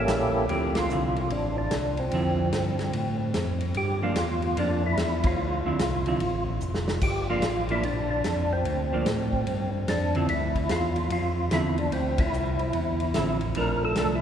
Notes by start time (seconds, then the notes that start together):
Already playing: A#3 C#4 E4 G4 A4
0.07 A#1, snare, hi-hat pedal, ride
0.47 D2 D3 F3 C4 G4, ride
0.52 E4
0.75 F4, snare, ride
0.89 C2 D3 F3 C4 E4, hi-hat pedal
1.16 ride
1.29 A1 D4, ride
1.58 D4
1.71 C2, snare, hi-hat pedal, ride
1.97 C4, ride
2.11 F2 D3 F3 C4 E4, ride
2.53 G2, snare, hi-hat pedal, ride
2.79 snare, ride
2.93 A2, ride
3.34 F2, snare, hi-hat pedal, ride
3.61 ride
3.74 G2 G4, ride
4.03 F3 A#3 D4 F4
4.16 E2, snare, hi-hat pedal, ride
4.42 ride
4.56 F2 F3 A#3 D4, ride
4.86 E4
4.97 E2, snare, hi-hat pedal, ride
5.24 F4, kick, ride
5.38 D2
5.65 D2 D3 F3 C4 E4
5.79 C2, snare, hi-hat pedal, ride
6.06 D3 F3 C4 E4, ride
6.20 A1, ride
6.60 F1, hi-hat pedal
6.75 snare
6.88 snare
7.01 G1 G4, kick, crash
7.30 F3 A#3 D4 F4
7.42 A1, snare, hi-hat pedal, ride
7.69 F3 A#3 D4 E4, ride
7.83 A#1 D4, ride
8.11 D4
8.24 F2, snare, hi-hat pedal, ride
8.53 C4
8.64 D2, ride
8.93 F3 A#3 D4
9.05 A2, snare, hi-hat pedal, ride
9.33 kick
9.47 G2, ride
9.87 F2 D4, snare, hi-hat pedal, ride
10.15 D3 F3 C4 E4, ride
10.28 D2 E4, ride
10.55 kick, ride
10.69 E2 F4, snare, hi-hat pedal, ride
10.96 ride
11.10 F2 F4, ride
11.51 E2 D3 F3 C4 E4, snare, hi-hat pedal, ride
11.78 D4, ride
11.92 D2 C4, ride
12.18 E4, kick, ride
12.33 C2, hi-hat pedal
12.59 ride
12.73 E2, ride
13.00 ride
13.14 A1 D3 F3 C4 E4, snare, hi-hat pedal, ride
13.41 ride
13.55 A#1 F3 A3 D4 A#4, ride
13.85 A4
13.96 C2 F3 A3 D4, snare, hi-hat pedal, ride
14.15 E4